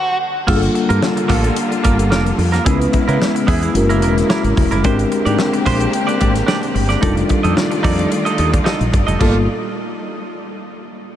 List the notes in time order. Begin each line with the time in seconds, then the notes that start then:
Already playing: F#4
0.47 G1 D3 G3 A#3 D4 F4 G#4 A4, kick, crash
0.56 A4
0.62 muted clean electric guitar stroke, closed hi-hat
0.74 muted clean electric guitar stroke, closed hi-hat
0.89 G2 A#3 F4 A#4, closed hi-hat
1.02 muted clean electric guitar stroke, snare
1.17 muted clean electric guitar stroke, closed hi-hat
1.28 A1 A#3 F4 A4, kick, snare, open hi-hat
1.43 A#3 F4 A4, closed hi-hat
1.56 closed hi-hat
1.71 muted clean electric guitar stroke, closed hi-hat
1.84 G1 A#3 F4 A#4, kick, closed hi-hat
1.98 muted clean electric guitar stroke, closed hi-hat
2.10 F1 A#3 F4 A#4, snare
2.25 muted clean electric guitar stroke, closed hi-hat
2.38 F2, muted clean electric guitar stroke, open hi-hat
2.52 A#3 F4 A#4, snare, closed hi-hat
2.64 C#2 C#3 E3 G#3 B3 C#4 E4 G#4 A#4, kick, closed hi-hat
2.73 B4
2.80 muted clean electric guitar stroke, closed hi-hat
2.93 muted clean electric guitar stroke, kick, closed hi-hat
3.08 C#3 B3 E4 A#4, closed hi-hat
3.20 muted clean electric guitar stroke, snare
3.35 muted clean electric guitar stroke, closed hi-hat
3.47 E2 B3 E4 G#4, kick, open hi-hat
3.62 B3 E4 G#4, closed hi-hat
3.74 F#1 C#3 F#3 G#3 A#3 C#4 E4 F#4 A#4, muted clean electric guitar stroke, closed hi-hat
3.89 A#3 E4 A#4, closed hi-hat
4.02 E1 A#3 E4 A#4, closed hi-hat
4.17 muted clean electric guitar stroke, snare, closed hi-hat
4.30 A#3 E4 A#4, snare
4.44 G#1, muted clean electric guitar stroke, closed hi-hat
4.56 E1, muted clean electric guitar stroke, kick, open hi-hat
4.71 F#1 A#3 E4 A#4, closed hi-hat
4.84 G#1 D3 G#3 A#3 C4 D4 G4 A#4 C5, kick, closed hi-hat
4.98 muted clean electric guitar stroke, closed hi-hat
5.12 muted clean electric guitar stroke, closed hi-hat
5.25 G#2 D4 G4 D5, closed hi-hat
5.39 muted clean electric guitar stroke, snare
5.53 muted clean electric guitar stroke, closed hi-hat
5.65 A#1 D4 G4 C5, kick, snare, open hi-hat
5.80 D4 G4 C5, closed hi-hat
5.92 muted clean electric guitar stroke, closed hi-hat
6.07 D4 G4 D5, closed hi-hat
6.19 G#1 D4 G4 D5, kick, closed hi-hat
6.34 muted clean electric guitar stroke, snare, closed hi-hat
6.46 D4 G4 D5, snare
6.62 muted clean electric guitar stroke, closed hi-hat
6.75 G1, muted clean electric guitar stroke, open hi-hat
6.89 D4 G4 D5, snare, closed hi-hat
7.01 F1 D#3 G3 A3 D4 D#4 F4 A4 D5, kick, closed hi-hat
7.16 muted clean electric guitar stroke, closed hi-hat
7.29 muted clean electric guitar stroke, kick, closed hi-hat
7.43 F2 D#4 A4 D#5, closed hi-hat
7.56 muted clean electric guitar stroke, snare
7.71 muted clean electric guitar stroke, closed hi-hat
7.83 F2 D#4 A4 D5, kick, open hi-hat
7.98 D#4 A4 D5, closed hi-hat
8.11 muted clean electric guitar stroke, closed hi-hat
8.25 D#4 A4 D#5, closed hi-hat
8.38 D#2 D#4 A4 D#5, closed hi-hat
8.52 muted clean electric guitar stroke, kick, closed hi-hat
8.64 D#4 A4 D#5, snare
8.80 A#1, muted clean electric guitar stroke, closed hi-hat
8.92 G1, muted clean electric guitar stroke, kick, closed hi-hat
9.07 F1 D#4 A4 D#5, closed hi-hat
9.19 G1 A#2 G3 A3 A#3 D4 F4 A4, kick, crash